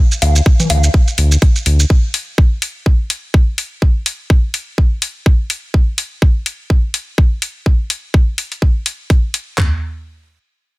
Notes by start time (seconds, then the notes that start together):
0.12 shaker
0.22 D2, open hi-hat, low woodblock
0.36 shaker
0.46 kick
0.60 low conga, shaker
0.70 D2, open hi-hat, low woodblock
0.84 shaker
0.94 kick
1.08 shaker
1.18 D2, open hi-hat
1.32 shaker
1.42 kick, open hi-hat
1.56 shaker
1.66 D2, open hi-hat
1.80 shaker
1.90 kick
2.14 open hi-hat
2.38 kick
2.62 open hi-hat
2.86 kick
3.10 open hi-hat
3.34 kick
3.58 open hi-hat
3.82 kick
4.06 open hi-hat
4.30 kick
4.54 open hi-hat
4.78 kick
5.02 open hi-hat
5.26 kick
5.50 open hi-hat
5.74 kick
5.98 open hi-hat
6.22 kick
6.46 open hi-hat
6.70 kick
6.94 open hi-hat
7.18 kick
7.42 open hi-hat
7.66 kick
7.90 open hi-hat
8.14 kick
8.38 open hi-hat
8.52 open hi-hat
8.62 kick
8.86 open hi-hat
9.10 kick, open hi-hat
9.34 open hi-hat
9.58 kick, clap, floor tom